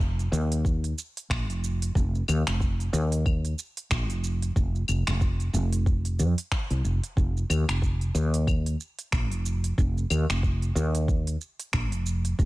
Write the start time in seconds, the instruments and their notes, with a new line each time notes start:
Already playing: fretless electric bass F1
0.00 kick, shaker
0.19 open hi-hat, shaker
0.32 fretless electric bass D#2, shaker
0.52 open hi-hat, shaker
0.65 kick, shaker
0.84 open hi-hat, shaker
0.98 shaker
1.17 open hi-hat, shaker
1.30 fretless electric bass A#1, finger snap, kick, shaker
1.49 fretless electric bass F1, open hi-hat, shaker
1.64 shaker
1.82 open hi-hat, shaker
1.95 fretless electric bass F1, kick, shaker
2.15 shaker
2.28 fretless electric bass D#2, claves, shaker
2.47 fretless electric bass F1, finger snap, open hi-hat, claves, shaker
2.60 kick, shaker
2.80 open hi-hat, shaker
2.93 fretless electric bass D#2, shaker
3.12 open hi-hat, shaker
3.26 kick, claves, shaker
3.45 open hi-hat, shaker
3.59 shaker
3.77 open hi-hat, shaker
3.91 fretless electric bass A#1, finger snap, kick, shaker
4.10 fretless electric bass F1, open hi-hat, shaker
4.24 shaker
4.42 open hi-hat, shaker
4.56 fretless electric bass F1, kick, shaker
4.75 shaker
4.88 fretless electric bass F1, claves, shaker
5.07 fretless electric bass F1, finger snap, open hi-hat, shaker
5.21 kick, shaker
5.40 open hi-hat, shaker
5.53 fretless electric bass F1, shaker
5.73 open hi-hat, shaker
5.86 kick, shaker
6.05 open hi-hat, shaker
6.19 fretless electric bass F2, shaker
6.38 open hi-hat, shaker
6.52 finger snap, kick, shaker
6.70 fretless electric bass C2, open hi-hat, shaker
6.84 fretless electric bass F1, shaker
7.04 open hi-hat, shaker
7.17 fretless electric bass F1, kick, shaker
7.37 shaker
7.50 fretless electric bass D#2, claves, shaker
7.68 fretless electric bass F1, finger snap, open hi-hat, claves, shaker
7.82 kick, shaker
8.01 open hi-hat, shaker
8.15 fretless electric bass D#2, shaker
8.34 open hi-hat, shaker
8.47 kick, claves, shaker
8.66 open hi-hat, shaker
8.80 shaker
8.99 open hi-hat, shaker
9.12 fretless electric bass A#1, finger snap, kick, shaker
9.31 fretless electric bass F1, open hi-hat, shaker
9.46 shaker
9.64 open hi-hat, shaker
9.78 fretless electric bass F1, kick, shaker
9.98 shaker
10.10 fretless electric bass D#2, claves, shaker
10.29 fretless electric bass F1, finger snap, open hi-hat, shaker
10.43 kick, shaker
10.62 open hi-hat, shaker
10.75 fretless electric bass D#2, shaker
10.95 open hi-hat, shaker
11.08 kick, shaker
11.27 open hi-hat, shaker
11.41 shaker
11.60 open hi-hat, shaker
11.73 fretless electric bass A#1, finger snap, kick, shaker
11.92 fretless electric bass F1, open hi-hat, shaker
12.06 shaker
12.25 open hi-hat, shaker
12.39 fretless electric bass F1, kick, shaker